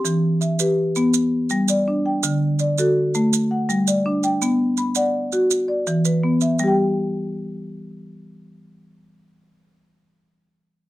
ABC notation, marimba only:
X:1
M:12/8
L:1/8
Q:3/8=110
K:G
V:1 name="Marimba"
c' z e B3 z3 d2 g- | g z d A3 z f2 d2 g- | g z b f3 z d2 B2 e- | e z8 z3 |
z12 |]
V:2 name="Marimba"
E,2 z G2 B, z2 G,2 D2 | D,2 z F2 A, z2 G,2 D2 | B,2 z d2 F z2 E,2 B,2 | [G,Gg]12- |
[G,Gg]12 |]